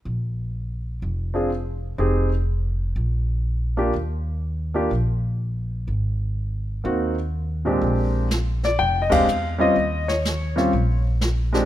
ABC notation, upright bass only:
X:1
M:4/4
L:1/8
Q:"Swing" 1/4=124
K:Bbmix
V:1 name="Upright bass" clef=bass
B,,,4 F,,,4 | F,,,4 B,,,4 | E,,4 B,,,4 | A,,,4 E,,4 |
B,,,4 F,,,2 =E,,2 | E,,4 B,,,4 |]